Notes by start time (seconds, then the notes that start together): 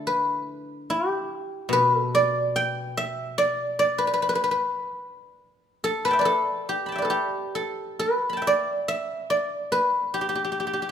Already playing: D3 A3 D4 E4 A4 D5
0.07 B4
0.90 G4
1.69 B2 B4
1.98 A4
2.15 D5
2.56 G5
2.97 E5
3.38 D5
3.79 D5
3.98 B4
4.07 B4
4.14 B4
4.22 B4
4.29 B4
4.35 B4
4.44 B4
4.51 B4
5.84 A4
6.05 B4 A5 B5
6.11 E5 G5
6.19 B4 D5
6.25 A4
6.69 G4
6.86 A5 B5
6.92 E5 G5
6.98 B4 D5
7.05 A4
7.10 G4
7.55 A4
7.99 B4
8.29 A5 B5
8.37 G5
8.42 E5
8.47 D5
8.88 E5
9.30 D5
9.72 B4
10.14 G4
10.21 G4
10.29 G4
10.35 G4
10.44 G4
10.52 G4
10.60 G4
10.67 G4
10.73 G4
10.82 G4